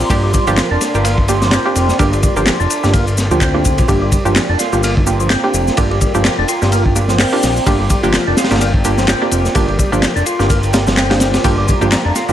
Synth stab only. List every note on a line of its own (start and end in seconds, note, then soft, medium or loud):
0.10 0.25 A#3 loud
0.10 0.25 D4 medium
0.10 0.25 F4 medium
0.10 0.25 G4 loud
0.47 0.59 A#3 loud
0.47 0.59 D4 medium
0.47 0.59 F4 medium
0.47 0.59 G4 loud
0.95 1.06 A#3 medium
0.95 1.06 D4 medium
0.95 1.06 F4 medium
0.95 1.06 G4 medium
1.29 1.38 A#3 medium
1.29 1.38 D4 medium
1.29 1.38 F4 medium
1.29 1.38 G4 medium
1.65 1.97 A#3 medium
1.65 1.97 D4 medium
1.65 1.97 F4 medium
1.65 1.97 G4 medium
1.99 2.14 A#3 loud
1.99 2.14 D4 medium
1.99 2.14 F4 medium
1.99 2.14 G4 loud
2.36 2.48 A#3 loud
2.36 2.48 D4 medium
2.36 2.48 F4 medium
2.36 2.48 G4 loud
2.83 2.95 A#3 medium
2.83 2.95 D4 medium
2.83 2.95 F4 medium
2.83 2.95 G4 medium
3.31 3.42 A#3 medium
3.31 3.42 D4 medium
3.31 3.43 F4 medium
3.31 3.42 G4 medium
3.54 3.61 A#3 medium
3.54 3.61 D4 medium
3.54 3.61 F4 medium
3.54 3.61 G4 medium
3.88 4.03 A#3 loud
3.88 4.03 D4 medium
3.88 4.03 F4 medium
3.88 4.03 G4 loud
4.25 4.37 A#3 loud
4.25 4.37 D4 medium
4.25 4.37 F4 medium
4.25 4.37 G4 loud
4.73 4.84 A#3 medium
4.73 4.84 D4 medium
4.73 4.84 F4 medium
4.73 4.84 G4 medium
5.07 5.16 A#3 medium
5.07 5.16 D4 medium
5.07 5.16 F4 medium
5.07 5.16 G4 medium
5.44 5.75 A#3 medium
5.44 5.75 D4 medium
5.44 5.75 F4 medium
5.44 5.75 G4 medium
5.77 5.92 A#3 loud
5.77 5.92 D4 medium
5.77 5.92 F4 medium
5.77 5.92 G4 loud
6.15 6.26 A#3 loud
6.15 6.26 D4 medium
6.15 6.26 F4 medium
6.15 6.26 G4 loud
6.62 6.73 A#3 medium
6.62 6.73 D4 medium
6.62 6.73 F4 medium
6.62 6.73 G4 medium
6.96 7.05 A#3 medium
6.96 7.05 D4 medium
6.96 7.05 F4 medium
6.96 7.05 G4 medium
7.32 7.64 A#3 medium
7.32 7.64 D4 medium
7.32 7.64 F4 medium
7.32 7.64 G4 medium
7.66 7.81 A#3 loud
7.66 7.81 D4 medium
7.66 7.81 F4 medium
7.66 7.81 G4 loud
8.03 8.15 A#3 loud
8.03 8.15 D4 medium
8.03 8.15 F4 medium
8.03 8.15 G4 loud
8.51 8.62 A#3 medium
8.51 8.62 D4 medium
8.51 8.62 F4 medium
8.51 8.62 G4 medium
8.85 8.94 A#3 medium
8.85 8.94 D4 medium
8.85 8.94 F4 medium
8.85 8.94 G4 medium
9.21 9.53 A#3 medium
9.21 9.53 D4 medium
9.21 9.53 F4 medium
9.21 9.53 G4 medium
9.55 9.69 A#3 loud
9.55 9.69 D4 medium
9.55 9.70 F4 medium
9.55 9.70 G4 loud
9.92 10.04 A#3 loud
9.92 10.04 D4 medium
9.92 10.04 F4 medium
9.92 10.04 G4 loud
10.39 10.51 A#3 medium
10.39 10.51 D4 medium
10.39 10.51 F4 medium
10.39 10.51 G4 medium
10.73 10.82 A#3 medium
10.73 10.82 D4 medium
10.73 10.82 F4 medium
10.73 10.82 G4 medium
11.10 11.42 A#3 medium
11.10 11.42 D4 medium
11.10 11.42 F4 medium
11.10 11.42 G4 medium
11.44 11.59 A#3 loud
11.44 11.59 D4 medium
11.44 11.59 F4 medium
11.44 11.59 G4 loud
11.81 11.93 A#3 loud
11.81 11.93 D4 medium
11.81 11.93 F4 medium
11.81 11.93 G4 loud
12.29 12.33 A#3 medium
12.29 12.33 D4 medium
12.29 12.33 F4 medium
12.29 12.33 G4 medium